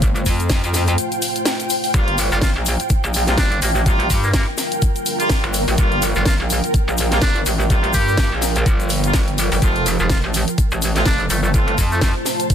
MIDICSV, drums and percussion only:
0, 0, Header, 1, 2, 480
1, 0, Start_track
1, 0, Key_signature, -2, "minor"
1, 0, Tempo, 480000
1, 21, Time_signature, 4, 2, 24, 8
1, 12547, End_track
2, 0, Start_track
2, 0, Title_t, "Drums"
2, 19, Note_on_c, 9, 82, 50
2, 20, Note_on_c, 9, 36, 113
2, 21, Note_on_c, 9, 42, 88
2, 119, Note_off_c, 9, 82, 0
2, 121, Note_off_c, 9, 36, 0
2, 121, Note_off_c, 9, 42, 0
2, 156, Note_on_c, 9, 82, 34
2, 158, Note_on_c, 9, 42, 38
2, 256, Note_off_c, 9, 82, 0
2, 258, Note_off_c, 9, 42, 0
2, 258, Note_on_c, 9, 82, 91
2, 260, Note_on_c, 9, 36, 60
2, 261, Note_on_c, 9, 46, 106
2, 359, Note_off_c, 9, 82, 0
2, 361, Note_off_c, 9, 36, 0
2, 361, Note_off_c, 9, 46, 0
2, 398, Note_on_c, 9, 42, 40
2, 398, Note_on_c, 9, 82, 39
2, 495, Note_off_c, 9, 82, 0
2, 495, Note_on_c, 9, 38, 121
2, 495, Note_on_c, 9, 82, 58
2, 498, Note_off_c, 9, 42, 0
2, 500, Note_on_c, 9, 36, 119
2, 501, Note_on_c, 9, 42, 84
2, 595, Note_off_c, 9, 38, 0
2, 595, Note_off_c, 9, 82, 0
2, 600, Note_off_c, 9, 36, 0
2, 601, Note_off_c, 9, 42, 0
2, 638, Note_on_c, 9, 42, 41
2, 638, Note_on_c, 9, 82, 38
2, 735, Note_on_c, 9, 38, 37
2, 738, Note_off_c, 9, 42, 0
2, 738, Note_off_c, 9, 82, 0
2, 741, Note_on_c, 9, 46, 98
2, 742, Note_on_c, 9, 82, 88
2, 835, Note_off_c, 9, 38, 0
2, 841, Note_off_c, 9, 46, 0
2, 842, Note_off_c, 9, 82, 0
2, 871, Note_on_c, 9, 82, 42
2, 878, Note_on_c, 9, 42, 56
2, 971, Note_off_c, 9, 82, 0
2, 978, Note_off_c, 9, 42, 0
2, 981, Note_on_c, 9, 42, 87
2, 991, Note_on_c, 9, 82, 53
2, 1081, Note_off_c, 9, 42, 0
2, 1091, Note_off_c, 9, 82, 0
2, 1118, Note_on_c, 9, 42, 41
2, 1122, Note_on_c, 9, 82, 36
2, 1218, Note_off_c, 9, 42, 0
2, 1221, Note_on_c, 9, 46, 109
2, 1222, Note_off_c, 9, 82, 0
2, 1222, Note_on_c, 9, 82, 98
2, 1321, Note_off_c, 9, 46, 0
2, 1322, Note_off_c, 9, 82, 0
2, 1358, Note_on_c, 9, 42, 56
2, 1359, Note_on_c, 9, 82, 37
2, 1455, Note_on_c, 9, 38, 122
2, 1458, Note_off_c, 9, 42, 0
2, 1459, Note_off_c, 9, 82, 0
2, 1460, Note_on_c, 9, 42, 86
2, 1461, Note_on_c, 9, 82, 54
2, 1555, Note_off_c, 9, 38, 0
2, 1560, Note_off_c, 9, 42, 0
2, 1561, Note_off_c, 9, 82, 0
2, 1598, Note_on_c, 9, 42, 39
2, 1599, Note_on_c, 9, 82, 36
2, 1696, Note_off_c, 9, 82, 0
2, 1696, Note_on_c, 9, 82, 93
2, 1698, Note_off_c, 9, 42, 0
2, 1701, Note_on_c, 9, 46, 102
2, 1796, Note_off_c, 9, 82, 0
2, 1801, Note_off_c, 9, 46, 0
2, 1838, Note_on_c, 9, 46, 62
2, 1838, Note_on_c, 9, 82, 37
2, 1937, Note_off_c, 9, 46, 0
2, 1938, Note_off_c, 9, 82, 0
2, 1940, Note_on_c, 9, 36, 117
2, 1940, Note_on_c, 9, 82, 51
2, 1941, Note_on_c, 9, 42, 85
2, 2040, Note_off_c, 9, 36, 0
2, 2040, Note_off_c, 9, 82, 0
2, 2041, Note_off_c, 9, 42, 0
2, 2078, Note_on_c, 9, 42, 40
2, 2178, Note_off_c, 9, 42, 0
2, 2181, Note_on_c, 9, 46, 108
2, 2183, Note_on_c, 9, 82, 88
2, 2281, Note_off_c, 9, 46, 0
2, 2283, Note_off_c, 9, 82, 0
2, 2317, Note_on_c, 9, 82, 40
2, 2415, Note_on_c, 9, 38, 127
2, 2417, Note_off_c, 9, 82, 0
2, 2420, Note_on_c, 9, 36, 124
2, 2420, Note_on_c, 9, 42, 84
2, 2427, Note_on_c, 9, 82, 59
2, 2515, Note_off_c, 9, 38, 0
2, 2520, Note_off_c, 9, 36, 0
2, 2520, Note_off_c, 9, 42, 0
2, 2527, Note_off_c, 9, 82, 0
2, 2657, Note_on_c, 9, 82, 98
2, 2660, Note_on_c, 9, 46, 107
2, 2757, Note_off_c, 9, 82, 0
2, 2760, Note_off_c, 9, 46, 0
2, 2798, Note_on_c, 9, 42, 55
2, 2799, Note_on_c, 9, 82, 45
2, 2895, Note_off_c, 9, 82, 0
2, 2895, Note_on_c, 9, 82, 55
2, 2898, Note_off_c, 9, 42, 0
2, 2900, Note_on_c, 9, 36, 124
2, 2901, Note_on_c, 9, 42, 87
2, 2995, Note_off_c, 9, 82, 0
2, 3000, Note_off_c, 9, 36, 0
2, 3001, Note_off_c, 9, 42, 0
2, 3039, Note_on_c, 9, 82, 38
2, 3139, Note_off_c, 9, 82, 0
2, 3139, Note_on_c, 9, 82, 100
2, 3141, Note_on_c, 9, 46, 112
2, 3239, Note_off_c, 9, 82, 0
2, 3241, Note_off_c, 9, 46, 0
2, 3270, Note_on_c, 9, 82, 38
2, 3272, Note_on_c, 9, 38, 39
2, 3278, Note_on_c, 9, 42, 57
2, 3370, Note_off_c, 9, 82, 0
2, 3372, Note_off_c, 9, 38, 0
2, 3375, Note_on_c, 9, 38, 124
2, 3378, Note_off_c, 9, 42, 0
2, 3380, Note_on_c, 9, 36, 118
2, 3381, Note_on_c, 9, 42, 86
2, 3384, Note_on_c, 9, 82, 55
2, 3475, Note_off_c, 9, 38, 0
2, 3480, Note_off_c, 9, 36, 0
2, 3481, Note_off_c, 9, 42, 0
2, 3484, Note_off_c, 9, 82, 0
2, 3518, Note_on_c, 9, 42, 39
2, 3618, Note_off_c, 9, 42, 0
2, 3620, Note_on_c, 9, 82, 91
2, 3621, Note_on_c, 9, 46, 108
2, 3720, Note_off_c, 9, 82, 0
2, 3721, Note_off_c, 9, 46, 0
2, 3752, Note_on_c, 9, 82, 42
2, 3852, Note_off_c, 9, 82, 0
2, 3861, Note_on_c, 9, 36, 114
2, 3861, Note_on_c, 9, 42, 83
2, 3862, Note_on_c, 9, 82, 50
2, 3961, Note_off_c, 9, 36, 0
2, 3961, Note_off_c, 9, 42, 0
2, 3962, Note_off_c, 9, 82, 0
2, 3998, Note_on_c, 9, 42, 38
2, 4098, Note_off_c, 9, 42, 0
2, 4101, Note_on_c, 9, 36, 65
2, 4101, Note_on_c, 9, 46, 115
2, 4104, Note_on_c, 9, 82, 94
2, 4201, Note_off_c, 9, 36, 0
2, 4201, Note_off_c, 9, 46, 0
2, 4204, Note_off_c, 9, 82, 0
2, 4234, Note_on_c, 9, 82, 40
2, 4334, Note_off_c, 9, 82, 0
2, 4335, Note_on_c, 9, 38, 127
2, 4339, Note_on_c, 9, 82, 51
2, 4341, Note_on_c, 9, 36, 127
2, 4341, Note_on_c, 9, 42, 86
2, 4435, Note_off_c, 9, 38, 0
2, 4439, Note_off_c, 9, 82, 0
2, 4441, Note_off_c, 9, 36, 0
2, 4441, Note_off_c, 9, 42, 0
2, 4575, Note_on_c, 9, 38, 39
2, 4578, Note_on_c, 9, 82, 96
2, 4581, Note_on_c, 9, 46, 111
2, 4675, Note_off_c, 9, 38, 0
2, 4678, Note_off_c, 9, 82, 0
2, 4681, Note_off_c, 9, 46, 0
2, 4718, Note_on_c, 9, 42, 56
2, 4720, Note_on_c, 9, 82, 44
2, 4818, Note_off_c, 9, 42, 0
2, 4818, Note_off_c, 9, 82, 0
2, 4818, Note_on_c, 9, 82, 58
2, 4820, Note_on_c, 9, 36, 124
2, 4821, Note_on_c, 9, 42, 85
2, 4918, Note_off_c, 9, 82, 0
2, 4920, Note_off_c, 9, 36, 0
2, 4921, Note_off_c, 9, 42, 0
2, 4957, Note_on_c, 9, 82, 39
2, 4958, Note_on_c, 9, 42, 38
2, 5057, Note_off_c, 9, 82, 0
2, 5058, Note_off_c, 9, 42, 0
2, 5060, Note_on_c, 9, 46, 111
2, 5061, Note_on_c, 9, 82, 89
2, 5160, Note_off_c, 9, 46, 0
2, 5161, Note_off_c, 9, 82, 0
2, 5198, Note_on_c, 9, 42, 54
2, 5200, Note_on_c, 9, 82, 39
2, 5295, Note_on_c, 9, 38, 127
2, 5297, Note_off_c, 9, 42, 0
2, 5300, Note_off_c, 9, 82, 0
2, 5301, Note_on_c, 9, 36, 126
2, 5301, Note_on_c, 9, 42, 83
2, 5302, Note_on_c, 9, 82, 60
2, 5395, Note_off_c, 9, 38, 0
2, 5401, Note_off_c, 9, 36, 0
2, 5401, Note_off_c, 9, 42, 0
2, 5402, Note_off_c, 9, 82, 0
2, 5438, Note_on_c, 9, 42, 37
2, 5538, Note_off_c, 9, 42, 0
2, 5539, Note_on_c, 9, 82, 98
2, 5540, Note_on_c, 9, 46, 106
2, 5639, Note_off_c, 9, 82, 0
2, 5640, Note_off_c, 9, 46, 0
2, 5675, Note_on_c, 9, 82, 41
2, 5677, Note_on_c, 9, 46, 66
2, 5775, Note_off_c, 9, 82, 0
2, 5776, Note_on_c, 9, 82, 55
2, 5777, Note_off_c, 9, 46, 0
2, 5781, Note_on_c, 9, 36, 119
2, 5781, Note_on_c, 9, 42, 82
2, 5876, Note_off_c, 9, 82, 0
2, 5881, Note_off_c, 9, 36, 0
2, 5881, Note_off_c, 9, 42, 0
2, 5918, Note_on_c, 9, 42, 35
2, 6018, Note_off_c, 9, 42, 0
2, 6020, Note_on_c, 9, 46, 114
2, 6025, Note_on_c, 9, 82, 97
2, 6120, Note_off_c, 9, 46, 0
2, 6125, Note_off_c, 9, 82, 0
2, 6147, Note_on_c, 9, 82, 46
2, 6247, Note_off_c, 9, 82, 0
2, 6255, Note_on_c, 9, 38, 127
2, 6260, Note_on_c, 9, 42, 84
2, 6261, Note_on_c, 9, 36, 124
2, 6265, Note_on_c, 9, 82, 65
2, 6355, Note_off_c, 9, 38, 0
2, 6360, Note_off_c, 9, 42, 0
2, 6361, Note_off_c, 9, 36, 0
2, 6365, Note_off_c, 9, 82, 0
2, 6501, Note_on_c, 9, 46, 109
2, 6502, Note_on_c, 9, 82, 100
2, 6601, Note_off_c, 9, 46, 0
2, 6602, Note_off_c, 9, 82, 0
2, 6638, Note_on_c, 9, 42, 52
2, 6646, Note_on_c, 9, 82, 40
2, 6738, Note_off_c, 9, 42, 0
2, 6740, Note_on_c, 9, 42, 81
2, 6741, Note_on_c, 9, 36, 127
2, 6743, Note_off_c, 9, 82, 0
2, 6743, Note_on_c, 9, 82, 54
2, 6840, Note_off_c, 9, 42, 0
2, 6841, Note_off_c, 9, 36, 0
2, 6843, Note_off_c, 9, 82, 0
2, 6884, Note_on_c, 9, 82, 40
2, 6974, Note_off_c, 9, 82, 0
2, 6974, Note_on_c, 9, 82, 97
2, 6981, Note_on_c, 9, 46, 117
2, 7074, Note_off_c, 9, 82, 0
2, 7081, Note_off_c, 9, 46, 0
2, 7112, Note_on_c, 9, 38, 38
2, 7118, Note_on_c, 9, 42, 54
2, 7124, Note_on_c, 9, 82, 39
2, 7212, Note_off_c, 9, 38, 0
2, 7215, Note_on_c, 9, 38, 127
2, 7216, Note_off_c, 9, 82, 0
2, 7216, Note_on_c, 9, 82, 53
2, 7218, Note_off_c, 9, 42, 0
2, 7221, Note_on_c, 9, 36, 125
2, 7221, Note_on_c, 9, 42, 79
2, 7315, Note_off_c, 9, 38, 0
2, 7316, Note_off_c, 9, 82, 0
2, 7321, Note_off_c, 9, 36, 0
2, 7321, Note_off_c, 9, 42, 0
2, 7358, Note_on_c, 9, 42, 36
2, 7458, Note_off_c, 9, 42, 0
2, 7458, Note_on_c, 9, 82, 104
2, 7460, Note_on_c, 9, 46, 109
2, 7558, Note_off_c, 9, 82, 0
2, 7560, Note_off_c, 9, 46, 0
2, 7600, Note_on_c, 9, 82, 41
2, 7700, Note_off_c, 9, 82, 0
2, 7701, Note_on_c, 9, 36, 115
2, 7701, Note_on_c, 9, 42, 76
2, 7701, Note_on_c, 9, 82, 49
2, 7801, Note_off_c, 9, 36, 0
2, 7801, Note_off_c, 9, 42, 0
2, 7801, Note_off_c, 9, 82, 0
2, 7838, Note_on_c, 9, 42, 35
2, 7934, Note_on_c, 9, 82, 92
2, 7938, Note_off_c, 9, 42, 0
2, 7941, Note_on_c, 9, 36, 65
2, 7941, Note_on_c, 9, 46, 112
2, 8034, Note_off_c, 9, 82, 0
2, 8041, Note_off_c, 9, 36, 0
2, 8041, Note_off_c, 9, 46, 0
2, 8081, Note_on_c, 9, 82, 41
2, 8175, Note_on_c, 9, 38, 124
2, 8181, Note_off_c, 9, 82, 0
2, 8181, Note_on_c, 9, 36, 127
2, 8181, Note_on_c, 9, 42, 77
2, 8186, Note_on_c, 9, 82, 58
2, 8275, Note_off_c, 9, 38, 0
2, 8281, Note_off_c, 9, 36, 0
2, 8281, Note_off_c, 9, 42, 0
2, 8286, Note_off_c, 9, 82, 0
2, 8415, Note_on_c, 9, 38, 36
2, 8421, Note_on_c, 9, 46, 108
2, 8426, Note_on_c, 9, 82, 107
2, 8515, Note_off_c, 9, 38, 0
2, 8521, Note_off_c, 9, 46, 0
2, 8526, Note_off_c, 9, 82, 0
2, 8554, Note_on_c, 9, 82, 42
2, 8558, Note_on_c, 9, 42, 50
2, 8654, Note_off_c, 9, 82, 0
2, 8657, Note_off_c, 9, 42, 0
2, 8660, Note_on_c, 9, 36, 120
2, 8660, Note_on_c, 9, 42, 76
2, 8665, Note_on_c, 9, 82, 58
2, 8760, Note_off_c, 9, 36, 0
2, 8760, Note_off_c, 9, 42, 0
2, 8765, Note_off_c, 9, 82, 0
2, 8798, Note_on_c, 9, 42, 34
2, 8802, Note_on_c, 9, 82, 36
2, 8894, Note_off_c, 9, 82, 0
2, 8894, Note_on_c, 9, 82, 92
2, 8898, Note_off_c, 9, 42, 0
2, 8900, Note_on_c, 9, 46, 112
2, 8994, Note_off_c, 9, 82, 0
2, 9000, Note_off_c, 9, 46, 0
2, 9038, Note_on_c, 9, 42, 52
2, 9039, Note_on_c, 9, 82, 40
2, 9135, Note_on_c, 9, 38, 118
2, 9138, Note_off_c, 9, 42, 0
2, 9139, Note_off_c, 9, 82, 0
2, 9141, Note_on_c, 9, 36, 123
2, 9141, Note_on_c, 9, 42, 75
2, 9143, Note_on_c, 9, 82, 61
2, 9235, Note_off_c, 9, 38, 0
2, 9241, Note_off_c, 9, 36, 0
2, 9241, Note_off_c, 9, 42, 0
2, 9243, Note_off_c, 9, 82, 0
2, 9278, Note_on_c, 9, 42, 35
2, 9378, Note_off_c, 9, 42, 0
2, 9381, Note_on_c, 9, 46, 115
2, 9384, Note_on_c, 9, 82, 92
2, 9481, Note_off_c, 9, 46, 0
2, 9484, Note_off_c, 9, 82, 0
2, 9518, Note_on_c, 9, 46, 66
2, 9524, Note_on_c, 9, 82, 41
2, 9618, Note_off_c, 9, 46, 0
2, 9621, Note_on_c, 9, 36, 112
2, 9621, Note_on_c, 9, 42, 77
2, 9622, Note_off_c, 9, 82, 0
2, 9622, Note_on_c, 9, 82, 57
2, 9721, Note_off_c, 9, 36, 0
2, 9721, Note_off_c, 9, 42, 0
2, 9721, Note_off_c, 9, 82, 0
2, 9758, Note_on_c, 9, 42, 34
2, 9858, Note_off_c, 9, 42, 0
2, 9860, Note_on_c, 9, 46, 115
2, 9865, Note_on_c, 9, 82, 82
2, 9960, Note_off_c, 9, 46, 0
2, 9965, Note_off_c, 9, 82, 0
2, 9992, Note_on_c, 9, 82, 38
2, 10092, Note_off_c, 9, 82, 0
2, 10095, Note_on_c, 9, 38, 118
2, 10100, Note_on_c, 9, 42, 80
2, 10101, Note_on_c, 9, 36, 127
2, 10103, Note_on_c, 9, 82, 60
2, 10195, Note_off_c, 9, 38, 0
2, 10200, Note_off_c, 9, 42, 0
2, 10201, Note_off_c, 9, 36, 0
2, 10203, Note_off_c, 9, 82, 0
2, 10340, Note_on_c, 9, 46, 104
2, 10340, Note_on_c, 9, 82, 92
2, 10440, Note_off_c, 9, 46, 0
2, 10440, Note_off_c, 9, 82, 0
2, 10478, Note_on_c, 9, 42, 49
2, 10484, Note_on_c, 9, 82, 43
2, 10577, Note_off_c, 9, 42, 0
2, 10580, Note_on_c, 9, 36, 123
2, 10580, Note_on_c, 9, 42, 81
2, 10584, Note_off_c, 9, 82, 0
2, 10584, Note_on_c, 9, 82, 55
2, 10680, Note_off_c, 9, 36, 0
2, 10680, Note_off_c, 9, 42, 0
2, 10684, Note_off_c, 9, 82, 0
2, 10714, Note_on_c, 9, 82, 37
2, 10814, Note_off_c, 9, 82, 0
2, 10820, Note_on_c, 9, 46, 109
2, 10821, Note_on_c, 9, 82, 103
2, 10920, Note_off_c, 9, 46, 0
2, 10921, Note_off_c, 9, 82, 0
2, 10952, Note_on_c, 9, 38, 36
2, 10958, Note_on_c, 9, 42, 51
2, 10962, Note_on_c, 9, 82, 38
2, 11052, Note_off_c, 9, 38, 0
2, 11055, Note_on_c, 9, 38, 122
2, 11058, Note_off_c, 9, 42, 0
2, 11058, Note_off_c, 9, 82, 0
2, 11058, Note_on_c, 9, 82, 55
2, 11060, Note_on_c, 9, 36, 121
2, 11060, Note_on_c, 9, 42, 78
2, 11155, Note_off_c, 9, 38, 0
2, 11158, Note_off_c, 9, 82, 0
2, 11160, Note_off_c, 9, 36, 0
2, 11160, Note_off_c, 9, 42, 0
2, 11198, Note_on_c, 9, 42, 34
2, 11298, Note_off_c, 9, 42, 0
2, 11299, Note_on_c, 9, 82, 94
2, 11300, Note_on_c, 9, 46, 111
2, 11399, Note_off_c, 9, 82, 0
2, 11400, Note_off_c, 9, 46, 0
2, 11437, Note_on_c, 9, 82, 44
2, 11537, Note_off_c, 9, 82, 0
2, 11540, Note_on_c, 9, 36, 115
2, 11541, Note_on_c, 9, 42, 83
2, 11541, Note_on_c, 9, 82, 48
2, 11640, Note_off_c, 9, 36, 0
2, 11641, Note_off_c, 9, 42, 0
2, 11641, Note_off_c, 9, 82, 0
2, 11678, Note_on_c, 9, 42, 36
2, 11778, Note_off_c, 9, 42, 0
2, 11780, Note_on_c, 9, 36, 60
2, 11780, Note_on_c, 9, 46, 105
2, 11782, Note_on_c, 9, 82, 94
2, 11880, Note_off_c, 9, 36, 0
2, 11880, Note_off_c, 9, 46, 0
2, 11882, Note_off_c, 9, 82, 0
2, 11917, Note_on_c, 9, 82, 39
2, 12014, Note_on_c, 9, 38, 114
2, 12017, Note_off_c, 9, 82, 0
2, 12020, Note_on_c, 9, 36, 122
2, 12020, Note_on_c, 9, 42, 83
2, 12024, Note_on_c, 9, 82, 58
2, 12114, Note_off_c, 9, 38, 0
2, 12120, Note_off_c, 9, 36, 0
2, 12120, Note_off_c, 9, 42, 0
2, 12124, Note_off_c, 9, 82, 0
2, 12255, Note_on_c, 9, 38, 34
2, 12260, Note_on_c, 9, 46, 99
2, 12261, Note_on_c, 9, 82, 99
2, 12355, Note_off_c, 9, 38, 0
2, 12360, Note_off_c, 9, 46, 0
2, 12361, Note_off_c, 9, 82, 0
2, 12397, Note_on_c, 9, 42, 54
2, 12398, Note_on_c, 9, 82, 39
2, 12497, Note_off_c, 9, 42, 0
2, 12498, Note_off_c, 9, 82, 0
2, 12500, Note_on_c, 9, 36, 118
2, 12500, Note_on_c, 9, 42, 84
2, 12505, Note_on_c, 9, 82, 50
2, 12547, Note_off_c, 9, 36, 0
2, 12547, Note_off_c, 9, 42, 0
2, 12547, Note_off_c, 9, 82, 0
2, 12547, End_track
0, 0, End_of_file